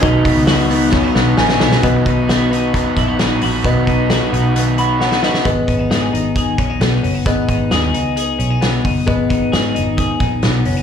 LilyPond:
<<
  \new Staff \with { instrumentName = "Reed electric piano" } { \time 4/4 \key gis \minor \tempo 4 = 133 << { r2. gis''4 | r1 | r2 r8 b''8 fis''4 | r1 |
r1 | r1 | } \\ { <dis' fis' b' dis''>1 | <fis' b' dis''>1 | <fis' b' dis''>2.~ <fis' b' dis''>8 <fis' b' dis''>8 | <gis' b' dis''>1 |
<gis' b' dis''>1 | <gis' b' dis''>1 | } >> }
  \new Staff \with { instrumentName = "Clean electric guitar" } { \time 4/4 \key gis \minor dis8 b8 fis'8 b8 cis'16 dis'16 b8 dis'8 b8 | b8 dis'8 fis'8 dis'8 b8 e'16 fis'16 dis'8 fis'8 | b8 dis'8 fis'8 dis'8 b8 fis'8 cis'16 dis'16 fis'8 | b8 cis'16 dis'16 gis'8 dis'8 gis'8 cis'16 dis'16 b8 cis'16 dis'16 |
b8 dis'8 gis'8 dis'8 gis'8 cis'16 dis'16 b8 dis'8 | b8 dis'8 gis'8 dis'8 gis'8 dis'8 b8 cis'16 dis'16 | }
  \new Staff \with { instrumentName = "Overdriven electric guitar" } { \time 4/4 \key gis \minor <b, dis fis b dis' b'>8 <fis b dis' b'>8 <b, dis fis b dis' b'>8 <fis b dis' b'>8 <fis b dis' b'>8 <fis b dis' b'>8 <b, dis fis b dis' b'>8 <fis b dis' b'>8 | <b, dis fis b dis' b'>8 <fis b dis' b'>8 <fis b dis' b'>8 <fis b dis' b'>8 <b, dis fis b dis' b'>8 <fis b dis' b'>8 <fis b dis' b'>8 <fis b dis' b'>8 | <b, dis fis b dis' b'>8 <fis b dis' b'>8 <fis b dis' b'>8 <fis b dis' b'>8 <b, dis fis b dis' b'>8 <fis b dis' b'>8 <fis b dis' b'>8 <fis b dis' b'>8 | r1 |
r1 | r1 | }
  \new Staff \with { instrumentName = "Fingered electric bass" } { \clef bass \time 4/4 \key gis \minor b,,8. cis,4. r16 b,,8 ais,,8 b,,8 | b,,2~ b,,8 ais,,4 ais,,8 | b,,4~ b,,16 r16 b,,2 r8 | gis,,8 gis,,8 gis,8 gis,,4 ais,,8 b,,8 fis,,8 |
gis,,8 gis,,8 dis,8 cis,4 b,,4 fis,,8 | gis,,8 gis,,8 gis,8 gis,,4 ais,,8 b,,8 fis,,8 | }
  \new DrumStaff \with { instrumentName = "Drums" } \drummode { \time 4/4 <hho hhp bd>8 <hho hhp bd>8 <hho hhp sn>8 <hho hhp>8 <bd sn>8 sn8 sn16 sn16 sn16 sn16 | <hh bd>8 <hh bd>8 <hh sn>8 hh8 <hh bd>8 <hh bd>8 <hh sn>8 hho8 | <hh bd>8 <hh bd>8 <hh sn>8 hh8 hh8 hh8 sn16 sn16 sn16 sn16 | <hh bd>8 <hh bd>8 <hh sn>8 hh8 <hh bd>8 <hh bd>8 <hh sn>8 hho8 |
<hh bd>8 <hh bd>8 <hh sn>8 hh8 hh8 hh8 <hh sn>8 <hho bd>8 | <hh bd>8 <hh bd>8 <hh sn>8 hh8 <hh bd>8 <hh bd>8 <hh sn>8 hho8 | }
>>